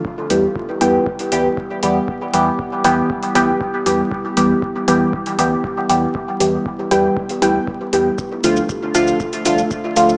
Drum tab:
HH |--o---o--oo---o-|--o---o--oo---o-|--o---o--oo---o-|--o---o--oo---o-|
SH |----------------|----------------|----------------|----------------|
BD |o---o---o---o---|o---o---o---o---|o---o---o---o---|o---o---o---o---|

HH |--o---o--oo---o-|
SH |x-xxx-xxxxxxx-xx|
BD |o---o---o---o---|